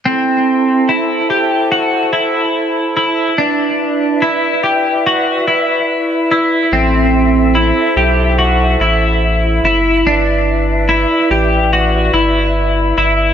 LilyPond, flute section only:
\new Staff \with { instrumentName = "Flute section" } { \time 4/4 \key a \dorian \tempo 4 = 72 << { a''1 | e''1~ | e''1~ | e''1 | } \\ { <e' a' c''>1 | <e' b' d''>1 | <e' a' c''>1 | <e' b' d''>1 | } >> }